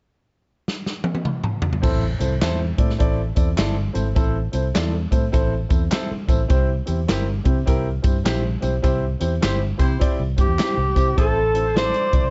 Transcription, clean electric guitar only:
2.42 E4 A4 C5
3.58 E4 A4 C5
4.75 E4 A4 C5
5.92 E4 A4 C5
7.09 E4 G4 C5
8.26 E4 G4 C5
9.43 E4 G4 C5
10.59 E4 G4 C5
11.77 E4 A4 C5

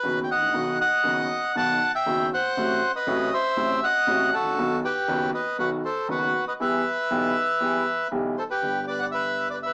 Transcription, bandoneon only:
Already playing: B4
0.23 G5
0.31 D#5 F#5
0.81 D#5 F#5
1.57 F#5 A5
1.95 E5 G5
2.34 C5 F#5
2.96 B4 D#5
3.34 C5 E5
3.84 D#5 F#5
4.34 F#4 A4
4.85 G4 B4
5.34 B4 D#5
5.59 F#4 B4
5.85 A4 C5
6.11 F#4 B4
6.48 B4 D#5
6.61 B4 E5
8.38 A4 C5
8.50 G4 B4
8.87 B4 D5
8.99 D5 F#5
9.11 B4 E5
9.50 B4 D5
9.63 B4 E5

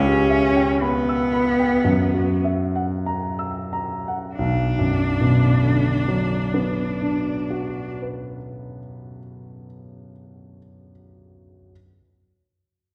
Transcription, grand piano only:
Already playing: C#2
0.07 G4
0.29 E5
0.56 G5
0.81 B5
1.09 E6
1.33 B5
1.59 G5
1.84 F#2
2.14 F#4
2.44 E5
2.76 F#5
3.06 A#5
3.39 E6
3.73 A#5
4.08 F#5
4.39 B1
4.79 F#2
5.21 B2
5.62 D3
6.08 F#3
6.54 B3
7.01 D4
7.50 F#4
8.02 B4

